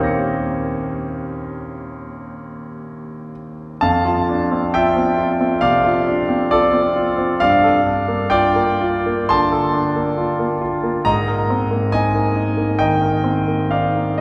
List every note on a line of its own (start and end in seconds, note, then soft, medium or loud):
0.00 3.74 D#2 soft
0.00 3.84 A#2 soft
0.00 3.32 A#3 medium
0.00 3.84 C4 medium
0.00 3.83 C#4 medium
0.00 3.83 D#4 medium
0.00 3.83 G4 soft
0.00 3.84 A#4 soft
0.00 3.84 C#5 soft
0.00 3.76 F5 soft
0.00 3.77 G6 soft
0.00 3.78 A#6 soft
0.07 3.80 C#7 soft
3.81 5.60 F2 medium
3.81 4.70 F5 medium
3.81 4.74 A5 medium
4.05 4.42 F4 soft
4.29 4.65 D4 soft
4.52 4.88 C4 soft
4.74 5.10 F4 medium
4.74 5.60 E5 medium
4.74 5.63 G5 loud
4.96 5.32 C4 soft
5.18 5.54 F4 soft
5.40 5.76 C4 soft
5.61 5.98 C3 medium
5.61 6.48 D5 medium
5.61 6.52 F5 medium
5.85 6.21 F4 medium
6.08 6.44 D4 soft
6.29 6.66 C4 soft
6.51 6.88 F4 soft
6.51 7.38 A4 medium
6.51 7.40 D5 medium
6.73 7.10 C4 soft
6.96 7.33 F4 medium
7.18 7.42 C4 soft
7.40 9.26 G2 medium
7.40 8.28 D5 medium
7.40 8.31 F5 loud
7.64 8.00 A4 medium
7.87 8.23 D4 medium
8.08 8.45 A#3 medium
8.30 8.70 F4 medium
8.30 9.26 D5 medium
8.30 9.29 G5 loud
8.56 8.96 A#3 medium
8.81 9.21 F4 medium
9.06 9.44 A#3 medium
9.29 9.66 D3 medium
9.29 10.57 A5 medium
9.29 10.61 C6 loud
9.52 9.87 A4 medium
9.74 10.08 D4 medium
9.96 10.30 A#3 medium
10.17 10.52 F4 soft
10.39 10.75 A#3 soft
10.61 10.97 F4 medium
10.83 11.06 A#3 soft
11.05 12.76 G#2 medium
11.05 11.89 D#5 medium
11.05 11.92 A#5 loud
11.28 11.63 A#4 medium
11.50 11.84 C4 soft
11.71 12.06 A#3 soft
11.92 12.27 D#4 medium
11.92 12.76 D#5 medium
11.92 12.79 G#5 loud
12.15 12.49 A#3 soft
12.36 12.71 D#4 soft
12.57 12.93 A#3 soft
12.79 13.16 D#3 soft
12.79 13.68 D#5 medium
12.79 13.72 G5 medium
13.02 13.39 A#4 soft
13.24 13.62 C4 soft
13.48 13.86 A#3 soft
13.71 14.11 D#4 soft
13.71 14.17 D5 medium
13.71 14.20 F5 medium
13.96 14.21 A#3 soft